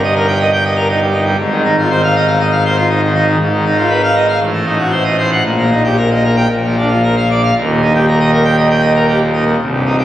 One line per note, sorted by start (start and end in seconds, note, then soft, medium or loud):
0.00 1.35 G1 medium
0.00 1.35 G2 medium
0.00 0.14 D#5 medium
0.16 0.27 A#4 medium
0.28 0.39 G5 medium
0.40 0.51 D#5 medium
0.53 0.64 G5 medium
0.65 0.76 D#5 medium
0.76 0.88 A#4 medium
0.88 1.00 D#4 medium
1.01 1.13 G3 medium
1.13 1.25 D#4 medium
1.25 1.37 G3 medium
1.38 3.36 G#1 medium
1.38 3.36 G#2 medium
1.51 1.63 D#3 medium
1.64 1.76 D#4 medium
1.79 1.89 F4 medium
1.90 2.02 C5 medium
2.04 2.14 F5 medium
2.16 2.27 D#5 medium
2.27 2.39 F5 medium
2.40 2.51 D#5 medium
2.52 2.64 F5 medium
2.65 2.77 C5 medium
2.76 2.88 F4 medium
2.90 3.01 D#4 medium
3.02 3.14 D#3 medium
3.15 3.26 D#4 medium
3.27 3.38 D#3 medium
3.40 4.38 G#1 medium
3.40 4.38 G#2 medium
3.53 3.64 D#3 medium
3.65 3.77 D#4 medium
3.77 3.89 F4 medium
3.90 4.02 B4 medium
4.03 4.15 F5 medium
4.14 4.27 D#5 medium
4.29 4.40 F5 medium
4.40 5.41 A1 medium
4.40 5.41 A2 medium
4.53 4.65 A3 medium
4.66 4.78 D#4 medium
4.79 4.91 F#4 medium
4.91 5.04 C5 medium
5.04 5.16 D#5 medium
5.18 5.30 C5 medium
5.32 5.43 F#5 medium
5.44 6.47 A#1 medium
5.44 6.46 A#2 medium
5.58 5.70 A#3 soft
5.71 5.83 D#4 medium
5.84 5.96 G4 medium
5.97 6.09 A#4 medium
6.11 6.23 D#5 medium
6.24 6.36 A#4 medium
6.36 6.48 G5 medium
6.50 7.52 A#1 medium
6.50 7.52 A#2 medium
6.64 6.76 F3 soft
6.78 6.89 D4 medium
6.89 7.01 F4 soft
7.04 7.15 A#4 medium
7.17 7.28 F5 medium
7.31 7.42 D5 medium
7.44 7.54 F5 medium
7.56 9.55 D#1 medium
7.56 9.55 D#2 medium
7.69 7.80 A#2 medium
7.82 7.93 D#4 medium
7.95 8.06 G4 medium
8.08 8.19 A#4 medium
8.20 8.31 D#5 medium
8.33 8.44 A#4 medium
8.45 8.56 G5 medium
8.57 8.68 D#5 medium
8.70 8.81 G5 medium
8.81 8.93 D#5 medium
8.95 9.06 A#4 medium
9.08 9.19 G4 medium
9.21 9.32 A#2 medium
9.34 9.45 D#4 medium
9.46 9.57 A#2 medium
9.59 10.04 C1 medium
9.59 10.04 C2 medium
9.72 9.83 G2 medium
9.86 9.96 D#4 medium
9.99 10.04 G4 medium